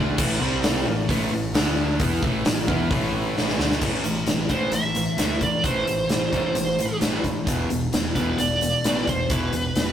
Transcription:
0.00 0.17 D2 loud
0.00 0.19 D3 medium
0.00 0.19 A3 loud
0.00 0.20 D4 loud
0.18 0.40 A1 loud
0.18 0.41 A2 medium
0.18 0.42 E3 loud
0.18 0.42 A3 loud
0.18 kick loud
0.18 crash loud
0.40 0.83 C2 medium
0.40 0.86 C3 medium
0.40 0.87 G3 medium
0.40 0.87 C4 medium
0.63 snare loud
0.63 open hi-hat medium
0.86 1.08 A1 medium
0.86 1.06 A2 medium
0.86 1.06 E3 medium
1.09 1.30 A1 medium
1.09 1.32 A2 medium
1.09 1.32 E3 medium
1.09 1.33 A3 loud
1.09 kick loud
1.09 open hi-hat medium
1.31 1.53 A1 medium
1.31 1.51 A2 medium
1.31 1.51 E3 medium
1.53 1.97 D2 loud
1.53 2.00 D3 medium
1.53 2.00 A3 loud
1.53 2.01 D4 loud
1.53 snare loud
1.53 open hi-hat medium
1.99 2.21 E2 medium
1.99 2.23 E3 loud
1.99 2.23 B3 loud
1.99 2.24 E4 loud
1.99 kick loud
1.99 open hi-hat medium
2.22 2.44 A1 medium
2.22 2.46 A2 medium
2.22 2.46 E3 medium
2.22 2.46 A3 loud
2.22 kick loud
2.45 2.67 A1 medium
2.45 2.65 A2 medium
2.45 2.65 E3 medium
2.45 snare loud
2.45 open hi-hat medium
2.68 2.89 E2 loud
2.68 2.91 E3 loud
2.68 2.92 B3 medium
2.68 2.92 E4 loud
2.68 kick loud
2.91 3.55 A1 medium
2.91 3.58 A2 medium
2.91 3.59 E3 medium
2.91 3.58 A3 loud
2.91 kick loud
2.91 open hi-hat medium
3.37 snare medium
3.48 snare medium
3.58 3.82 D2 medium
3.58 3.81 D3 medium
3.58 3.82 A3 medium
3.58 3.82 D4 loud
3.58 snare medium
3.71 snare medium
3.81 3.99 A1 medium
3.81 4.03 A2 medium
3.81 4.03 E3 medium
3.81 4.04 A3 loud
3.81 kick loud
3.81 crash loud
4.04 4.21 A1 medium
4.04 4.25 A2 medium
4.04 4.25 E3 medium
4.04 closed hi-hat medium
4.27 4.44 A1 medium
4.27 4.48 A2 medium
4.27 4.48 E3 medium
4.27 snare loud
4.27 closed hi-hat medium
4.49 4.67 A1 medium
4.49 4.71 A2 medium
4.49 4.72 E3 medium
4.49 4.72 A3 medium
4.49 4.74 C5 medium
4.49 kick medium
4.49 closed hi-hat medium
4.72 5.06 A1 medium
4.72 4.94 A2 medium
4.72 4.94 E3 medium
4.72 5.43 E5 medium
4.72 closed hi-hat medium
4.95 5.16 A2 medium
4.95 5.16 E3 medium
4.95 closed hi-hat medium
5.17 5.35 D2 medium
5.17 5.40 A2 medium
5.17 5.40 E3 medium
5.17 5.40 A3 medium
5.17 snare loud
5.17 closed hi-hat medium
5.40 5.58 A1 medium
5.40 5.62 A2 medium
5.40 5.62 E3 medium
5.40 5.63 D5 medium
5.40 kick medium
5.40 closed hi-hat medium
5.64 5.81 A1 medium
5.64 5.85 A2 medium
5.64 5.86 E3 medium
5.64 5.86 A3 loud
5.64 6.98 C5 medium
5.64 kick loud
5.64 closed hi-hat medium
5.86 6.03 A1 medium
5.86 6.07 A2 medium
5.86 6.08 E3 medium
5.86 closed hi-hat medium
6.09 6.27 A1 medium
6.09 6.30 A2 medium
6.09 6.31 E3 medium
6.09 snare loud
6.09 closed hi-hat medium
6.32 6.49 A1 medium
6.32 6.54 A2 medium
6.32 6.54 E3 medium
6.32 6.54 A3 medium
6.32 kick medium
6.32 closed hi-hat medium
6.55 6.89 A1 medium
6.55 6.76 A2 medium
6.55 6.77 E3 medium
6.55 closed hi-hat medium
6.79 7.00 A2 medium
6.79 7.00 E3 medium
6.79 closed hi-hat medium
7.01 7.18 A1 medium
7.01 7.23 A2 medium
7.01 7.23 E3 medium
7.01 7.24 A3 medium
7.01 snare loud
7.01 closed hi-hat medium
7.24 7.41 A1 medium
7.24 7.45 A2 medium
7.24 7.45 E3 medium
7.24 kick medium
7.24 closed hi-hat medium
7.47 7.64 E1 medium
7.47 7.68 E2 loud
7.47 7.69 B2 loud
7.47 7.69 E3 loud
7.47 kick loud
7.47 closed hi-hat medium
7.70 7.87 E1 medium
7.70 7.90 E2 medium
7.70 7.91 B2 medium
7.70 closed hi-hat medium
7.93 8.10 E1 medium
7.93 8.14 E2 medium
7.93 8.14 B2 medium
7.93 snare loud
7.93 closed hi-hat medium
8.15 8.32 E1 medium
8.15 8.37 E2 medium
8.15 8.37 B2 medium
8.15 8.38 E3 medium
8.15 8.37 B4 medium
8.15 kick medium
8.15 snare soft
8.15 closed hi-hat medium
8.38 8.73 E1 medium
8.38 8.60 E2 medium
8.38 8.60 B2 medium
8.38 9.09 D5 loud
8.38 closed hi-hat medium
8.61 8.82 E2 medium
8.61 8.83 B2 medium
8.61 closed hi-hat medium
8.84 9.01 A1 medium
8.84 9.06 E2 medium
8.84 9.06 B2 medium
8.84 9.06 E3 loud
8.84 snare loud
8.84 closed hi-hat medium
9.07 9.24 E1 medium
9.07 9.28 E2 medium
9.07 9.28 B2 medium
9.07 9.29 C5 medium
9.07 kick medium
9.07 closed hi-hat medium
9.30 9.47 E1 medium
9.30 9.52 E2 medium
9.30 9.52 B2 loud
9.30 9.52 E3 loud
9.30 9.92 B4 medium
9.30 kick loud
9.30 closed hi-hat medium
9.53 9.70 E1 medium
9.53 9.74 E2 medium
9.53 9.74 B2 medium
9.53 closed hi-hat medium
9.76 9.92 E1 medium
9.76 9.92 E2 medium
9.76 9.92 B2 medium
9.76 snare loud
9.76 closed hi-hat medium

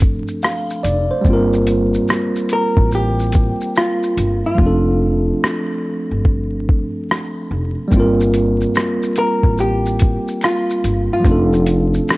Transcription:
0.00 0.15 G1 medium
0.00 1.18 F3 medium
0.00 1.19 A3 medium
0.00 1.21 C4 medium
0.00 1.22 D4 medium
0.00 1.24 A4 medium
0.00 kick medium
0.28 shaker soft
0.43 0.82 F5 medium
0.43 cross-stick loud
0.43 shaker medium
0.70 shaker medium
0.84 1.07 F1 medium
0.84 1.09 D5 medium
0.84 closed hi-hat medium
0.84 shaker soft
1.11 1.50 C5 medium
1.21 1.96 G1 loud
1.21 4.53 G3 medium
1.21 4.54 A#3 medium
1.21 kick medium
1.21 shaker medium
1.27 4.55 C4 medium
1.27 4.57 F4 medium
1.33 4.58 A#4 medium
1.53 shaker soft
1.67 closed hi-hat medium
1.67 shaker soft
1.94 shaker soft
2.08 cross-stick loud
2.08 shaker medium
2.36 shaker soft
2.49 2.90 A#4 loud
2.49 closed hi-hat medium
2.49 shaker soft
2.77 3.48 A1 medium
2.77 kick loud
2.91 3.73 G4 medium
2.91 shaker medium
3.19 shaker soft
3.33 kick loud
3.33 closed hi-hat medium
3.33 shaker medium
3.61 shaker soft
3.76 4.41 F4 medium
3.76 cross-stick loud
3.76 shaker medium
4.03 shaker soft
4.17 4.40 G1 medium
4.17 closed hi-hat medium
4.17 shaker soft
4.46 6.08 F4 medium
4.55 7.86 F3 medium
4.55 7.87 A3 medium
4.55 kick medium
4.59 5.30 F1 loud
4.59 7.89 C4 medium
4.63 7.90 D4 medium
4.63 7.92 A4 medium
5.44 cross-stick loud
6.11 6.82 G1 medium
6.25 kick medium
6.69 kick medium
7.11 cross-stick loud
7.51 7.74 F1 medium
7.88 11.19 G3 medium
7.88 11.20 A#3 medium
7.88 kick medium
7.88 shaker medium
7.92 8.63 G1 loud
7.92 11.22 C4 medium
7.97 11.24 F4 medium
7.97 11.25 A#4 medium
8.20 shaker soft
8.33 closed hi-hat medium
8.33 shaker soft
8.61 shaker soft
8.75 finger snap medium
8.75 cross-stick loud
8.75 shaker medium
9.03 shaker medium
9.16 9.60 A#4 loud
9.16 closed hi-hat medium
9.16 shaker medium
9.44 10.15 A1 medium
9.44 kick medium
9.58 10.45 G4 medium
9.58 shaker medium
9.86 shaker soft
9.99 kick medium
9.99 closed hi-hat medium
9.99 shaker medium
10.28 shaker soft
10.41 11.12 F4 medium
10.41 finger snap medium
10.41 cross-stick loud
10.41 shaker medium
10.70 shaker medium
10.84 11.07 G1 medium
10.84 closed hi-hat medium
10.84 shaker medium
11.13 12.17 F4 medium
11.20 12.17 F3 medium
11.20 12.17 A3 medium
11.25 11.96 F1 loud
11.25 12.17 C4 medium
11.25 12.17 D4 medium
11.25 kick medium
11.25 shaker medium
11.31 12.17 A4 medium
11.53 shaker soft
11.66 closed hi-hat medium
11.66 shaker soft
11.94 shaker soft
12.08 finger snap medium
12.08 cross-stick loud
12.08 shaker medium

